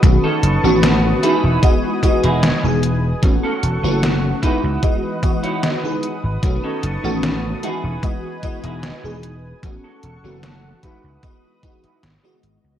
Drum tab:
HH |x-x-x-x-x-xxx-x-|x-x-x-x-x-xxx-x-|x-x-x-x-x-xxx-x-|x-x-x-x-x-xxx-x-|
SD |----o-------o---|----o-------o---|----o-------o---|----o-------o---|
BD |o-------o-o-----|o-----o-o-o-----|o-------o-o-----|o-----o-o-o-----|